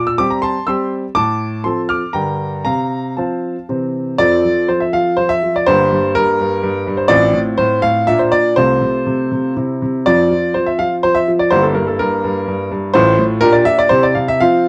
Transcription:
0.00 0.19 A#2 medium
0.07 0.19 E6 medium
0.18 0.55 G3 medium
0.18 0.55 C4 medium
0.18 0.55 G4 medium
0.18 0.31 D6 loud
0.30 0.44 A#5 medium
0.42 0.67 A5 medium
0.42 0.66 C6 loud
0.67 1.03 G3 medium
0.67 1.03 C4 medium
0.67 1.04 G4 medium
0.67 0.91 C6 medium
0.67 0.90 E6 medium
1.15 1.64 A2 medium
1.15 1.62 A5 medium
1.15 1.61 D6 loud
1.64 2.01 F3 soft
1.64 2.01 C4 soft
1.64 2.02 A4 medium
1.64 1.89 A5 medium
1.64 1.79 C6 medium
1.89 2.14 D6 medium
1.89 2.12 F6 medium
2.13 2.65 G2 medium
2.13 2.62 D3 soft
2.13 2.63 D4 soft
2.13 2.63 A#4 soft
2.13 2.63 G5 medium
2.13 2.63 A#5 medium
2.65 3.16 C3 medium
2.65 3.14 F5 medium
2.65 3.13 A#5 medium
3.17 3.55 F3 soft
3.17 3.55 C4 soft
3.17 3.55 C5 medium
3.17 3.66 F5 soft
3.17 3.65 A5 medium
3.69 4.18 C3 medium
3.69 4.15 E3 soft
3.69 4.16 C4 soft
3.69 4.16 C5 soft
4.18 4.44 F2 medium
4.18 4.43 F3 medium
4.18 5.63 C4 medium
4.18 5.63 A4 medium
4.18 4.69 D5 loud
4.44 4.67 F3 medium
4.68 4.93 F3 medium
4.68 4.81 C5 medium
4.80 4.93 E5 medium
4.93 5.16 F3 medium
4.93 5.18 F5 loud
5.16 5.41 F3 medium
5.16 5.29 C5 loud
5.29 5.54 E5 loud
5.43 5.66 F3 medium
5.56 5.67 D5 medium
5.66 5.91 G1 medium
5.66 5.91 G2 medium
5.66 7.07 A#3 medium
5.66 7.07 G4 medium
5.66 6.11 C5 loud
5.92 6.15 G2 medium
6.15 6.39 G2 medium
6.15 6.94 A#4 loud
6.41 6.62 G2 medium
6.63 6.86 G2 medium
6.87 7.10 G2 medium
6.97 7.10 C5 medium
7.08 7.33 A1 medium
7.08 7.32 A2 loud
7.08 8.03 C4 medium
7.08 8.03 F4 medium
7.08 7.38 D5 loud
7.34 7.57 A2 medium
7.58 7.82 A2 medium
7.58 7.80 C5 loud
7.82 8.07 A2 medium
7.82 8.07 F5 loud
8.07 8.31 A#2 medium
8.07 8.54 A#3 medium
8.07 8.54 D4 medium
8.07 8.20 E5 loud
8.19 8.32 C5 medium
8.32 8.57 A#2 medium
8.32 8.57 D5 loud
8.56 8.81 C2 medium
8.56 8.80 C3 medium
8.56 9.53 A3 medium
8.56 9.53 F4 medium
8.56 9.52 C5 loud
8.82 9.05 C3 medium
9.07 9.30 C3 medium
9.31 9.55 C3 medium
9.56 9.81 C3 medium
9.56 10.03 C4 soft
9.56 10.03 E4 soft
9.82 10.06 C3 medium
10.06 10.31 F2 medium
10.06 10.29 F3 medium
10.06 11.49 C4 medium
10.06 11.49 F4 medium
10.06 10.56 D5 loud
10.31 10.53 F3 medium
10.54 10.78 F3 medium
10.54 10.67 C5 medium
10.66 10.80 E5 medium
10.79 11.03 F3 medium
10.79 10.94 F5 loud
11.03 11.26 F3 medium
11.03 11.16 C5 loud
11.15 11.30 E5 loud
11.28 11.52 F3 medium
11.39 11.52 D5 medium
11.50 11.76 G1 medium
11.50 11.74 G2 medium
11.50 12.91 A#3 medium
11.50 12.91 E4 medium
11.50 11.64 C5 loud
11.62 11.76 A4 medium
11.75 11.99 G2 medium
11.75 11.88 A#4 medium
11.87 12.00 A4 medium
11.99 12.23 G2 medium
11.99 12.71 A#4 loud
12.24 12.46 G2 medium
12.47 12.70 G2 medium
12.71 12.94 G2 medium
12.94 13.18 A1 medium
12.94 13.18 A2 loud
12.94 13.39 A3 medium
12.94 13.39 F4 medium
12.94 13.23 C5 loud
13.19 13.42 A2 medium
13.41 13.65 A#2 loud
13.41 13.88 D4 medium
13.41 13.88 G4 medium
13.41 13.54 A#4 loud
13.52 13.66 D5 medium
13.65 13.91 A#2 medium
13.65 13.79 E5 loud
13.79 13.91 D5 loud
13.89 14.14 C3 medium
13.89 14.37 E4 medium
13.89 14.38 G4 medium
13.89 14.03 C5 loud
14.03 14.16 D5 medium
14.15 14.40 C3 medium
14.15 14.28 F5 medium
14.28 14.41 E5 loud
14.40 14.68 F3 medium
14.40 14.68 C4 medium
14.40 14.68 F4 medium
14.40 14.68 F5 loud

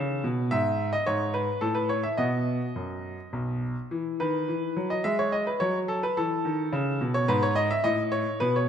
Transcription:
0.00 0.23 C#3 medium
0.00 0.24 A4 medium
0.24 0.50 B2 medium
0.51 0.91 G#2 medium
0.51 0.89 E5 medium
0.93 1.07 D#5 medium
1.06 1.47 G#2 medium
1.06 1.34 C#5 medium
1.34 1.59 B4 medium
1.61 2.03 A2 medium
1.61 1.76 A4 medium
1.75 1.90 B4 medium
1.89 2.04 C#5 medium
2.03 2.18 E5 medium
2.18 2.58 B2 soft
2.18 2.64 B3 soft
2.18 2.64 F#4 soft
2.18 3.62 D#5 medium
2.76 3.16 F#2 soft
3.33 3.74 B1 soft
3.91 4.18 E3 medium
4.20 4.47 D#3 medium
4.20 4.90 B4 medium
4.48 4.75 E3 soft
4.77 5.03 F#3 soft
4.90 5.04 D#5 medium
5.04 5.45 G#3 medium
5.04 5.18 E5 medium
5.19 5.33 C#5 medium
5.32 5.47 D#5 medium
5.47 5.61 B4 medium
5.60 6.01 F#3 medium
5.60 5.77 C#5 medium
5.88 6.03 A4 medium
6.03 6.17 B4 medium
6.17 6.43 E3 medium
6.17 7.14 A4 medium
6.45 6.71 D#3 medium
6.73 6.99 C#3 medium
7.01 7.27 B2 medium
7.14 7.28 C#5 medium
7.28 7.69 G#2 medium
7.28 7.42 B4 medium
7.43 7.56 C#5 medium
7.56 7.70 D#5 medium
7.71 7.84 E5 medium
7.84 8.25 A2 medium
7.84 8.01 D#5 medium
8.12 8.41 C#5 medium
8.40 8.69 B2 medium
8.40 8.55 B4 medium
8.56 8.69 C#5 medium

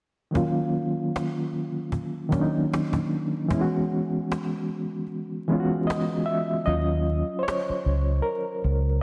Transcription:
0.31 1.65 D#3 medium
0.31 1.66 F#3 medium
0.31 1.67 A#3 medium
0.35 1.67 C#4 medium
0.35 1.68 F4 medium
0.35 cajon bass loud
0.75 cajon slap soft
1.16 cajon slap loud
1.16 cajon slap medium
1.53 cajon slap soft
1.92 cajon bass medium
2.29 3.32 D#3 medium
2.29 3.32 F#3 medium
2.29 3.33 A#3 medium
2.29 cajon bass medium
2.33 3.34 C#4 medium
2.33 2.41 D4 medium
2.41 3.38 D#4 medium
2.58 cajon slap soft
2.74 cajon slap loud
2.74 cajon slap medium
2.93 cajon bass medium
3.11 cajon slap soft
3.48 4.82 E3 medium
3.48 4.83 G#3 medium
3.48 4.83 B3 medium
3.48 cajon bass loud
3.53 4.84 C#4 medium
3.53 3.60 E4 medium
3.61 4.88 F#4 medium
3.91 cajon slap soft
4.32 cajon slap medium
4.69 cajon slap soft
5.07 cajon slap soft
5.47 6.49 E3 medium
5.47 6.50 G#3 medium
5.47 6.50 B3 medium
5.47 cajon slap soft
5.52 6.51 C#4 medium
5.52 5.58 F4 medium
5.60 6.55 F#4 medium
5.74 cajon slap soft
5.87 6.28 D#5 medium
5.87 cajon slap loud
5.87 cajon slap medium
6.26 6.67 E5 medium
6.26 cajon slap soft
6.66 7.21 D#2 medium
6.66 9.03 F#3 medium
6.66 9.03 C#4 medium
6.66 9.03 F4 medium
6.66 7.42 D#5 medium
6.66 cajon slap soft
7.07 cajon slap soft
7.39 7.45 C5 medium
7.43 8.26 C#5 medium
7.48 cajon slap loud
7.48 cajon slap medium
7.70 muted fingered electric bass stroke soft
7.85 8.20 C#2 medium
7.85 cajon slap soft
8.22 9.03 A#4 medium
8.22 cajon slap soft
8.64 8.98 C#2 medium
8.64 cajon slap soft
8.90 cajon slap soft

